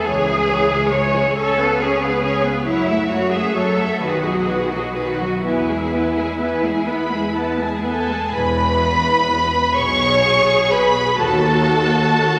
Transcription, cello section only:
0, 0, Header, 1, 2, 480
1, 0, Start_track
1, 0, Key_signature, 4, "major"
1, 0, Tempo, 862069
1, 43, Time_signature, 6, 3, 24, 8
1, 1484, Tempo, 904977
1, 2444, Tempo, 963082
1, 4364, Tempo, 946372
1, 6425, End_track
2, 0, Start_track
2, 0, Title_t, "Cello section"
2, 0, Program_c, 0, 48
2, 37, Note_on_c, 0, 68, 94
2, 513, Note_on_c, 0, 73, 84
2, 517, Note_off_c, 0, 68, 0
2, 755, Note_on_c, 0, 69, 92
2, 759, Note_off_c, 0, 73, 0
2, 999, Note_on_c, 0, 68, 78
2, 1002, Note_off_c, 0, 69, 0
2, 1479, Note_off_c, 0, 68, 0
2, 1481, Note_on_c, 0, 64, 83
2, 1709, Note_off_c, 0, 64, 0
2, 1710, Note_on_c, 0, 66, 70
2, 1828, Note_off_c, 0, 66, 0
2, 1830, Note_on_c, 0, 68, 73
2, 1948, Note_on_c, 0, 69, 79
2, 1952, Note_off_c, 0, 68, 0
2, 2193, Note_on_c, 0, 66, 71
2, 2194, Note_off_c, 0, 69, 0
2, 2239, Note_off_c, 0, 66, 0
2, 2240, Note_on_c, 0, 68, 65
2, 2282, Note_on_c, 0, 66, 67
2, 2285, Note_off_c, 0, 68, 0
2, 2321, Note_on_c, 0, 68, 64
2, 2328, Note_off_c, 0, 66, 0
2, 2371, Note_off_c, 0, 68, 0
2, 2371, Note_on_c, 0, 66, 62
2, 2415, Note_on_c, 0, 68, 69
2, 2418, Note_off_c, 0, 66, 0
2, 2461, Note_off_c, 0, 68, 0
2, 2461, Note_on_c, 0, 66, 68
2, 2500, Note_on_c, 0, 68, 70
2, 2505, Note_off_c, 0, 66, 0
2, 2543, Note_on_c, 0, 66, 59
2, 2546, Note_off_c, 0, 68, 0
2, 2588, Note_on_c, 0, 68, 61
2, 2590, Note_off_c, 0, 66, 0
2, 2633, Note_on_c, 0, 66, 61
2, 2634, Note_off_c, 0, 68, 0
2, 2677, Note_on_c, 0, 68, 57
2, 2678, Note_off_c, 0, 66, 0
2, 2722, Note_off_c, 0, 68, 0
2, 2722, Note_on_c, 0, 66, 68
2, 2925, Note_off_c, 0, 66, 0
2, 2925, Note_on_c, 0, 64, 63
2, 4101, Note_off_c, 0, 64, 0
2, 4361, Note_on_c, 0, 40, 80
2, 4964, Note_off_c, 0, 40, 0
2, 5085, Note_on_c, 0, 47, 82
2, 5695, Note_off_c, 0, 47, 0
2, 5814, Note_on_c, 0, 39, 93
2, 6404, Note_off_c, 0, 39, 0
2, 6425, End_track
0, 0, End_of_file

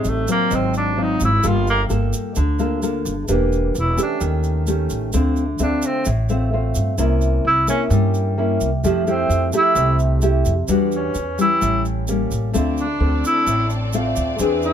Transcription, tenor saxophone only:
0, 0, Header, 1, 2, 480
1, 0, Start_track
1, 0, Key_signature, -1, "minor"
1, 0, Tempo, 462606
1, 1492, Time_signature, 4, 2, 24, 8
1, 15285, End_track
2, 0, Start_track
2, 0, Title_t, "Tenor saxophone"
2, 0, Program_c, 0, 66
2, 0, Note_on_c, 0, 56, 67
2, 90, Note_on_c, 0, 57, 72
2, 106, Note_off_c, 0, 56, 0
2, 311, Note_off_c, 0, 57, 0
2, 324, Note_on_c, 0, 58, 80
2, 573, Note_on_c, 0, 60, 69
2, 588, Note_off_c, 0, 58, 0
2, 792, Note_off_c, 0, 60, 0
2, 801, Note_on_c, 0, 62, 76
2, 1060, Note_on_c, 0, 63, 77
2, 1075, Note_off_c, 0, 62, 0
2, 1276, Note_off_c, 0, 63, 0
2, 1292, Note_on_c, 0, 64, 86
2, 1531, Note_on_c, 0, 65, 98
2, 1546, Note_off_c, 0, 64, 0
2, 1751, Note_off_c, 0, 65, 0
2, 1758, Note_on_c, 0, 58, 80
2, 1894, Note_off_c, 0, 58, 0
2, 3935, Note_on_c, 0, 64, 69
2, 4137, Note_off_c, 0, 64, 0
2, 4176, Note_on_c, 0, 62, 75
2, 4378, Note_off_c, 0, 62, 0
2, 5837, Note_on_c, 0, 62, 78
2, 6075, Note_on_c, 0, 60, 86
2, 6090, Note_off_c, 0, 62, 0
2, 6302, Note_off_c, 0, 60, 0
2, 7751, Note_on_c, 0, 64, 90
2, 7964, Note_off_c, 0, 64, 0
2, 7983, Note_on_c, 0, 61, 84
2, 8122, Note_off_c, 0, 61, 0
2, 9438, Note_on_c, 0, 60, 77
2, 9871, Note_off_c, 0, 60, 0
2, 9929, Note_on_c, 0, 64, 99
2, 10357, Note_off_c, 0, 64, 0
2, 11365, Note_on_c, 0, 61, 62
2, 11795, Note_off_c, 0, 61, 0
2, 11839, Note_on_c, 0, 64, 93
2, 12272, Note_off_c, 0, 64, 0
2, 13287, Note_on_c, 0, 62, 71
2, 13717, Note_off_c, 0, 62, 0
2, 13762, Note_on_c, 0, 64, 87
2, 14194, Note_off_c, 0, 64, 0
2, 15197, Note_on_c, 0, 64, 76
2, 15285, Note_off_c, 0, 64, 0
2, 15285, End_track
0, 0, End_of_file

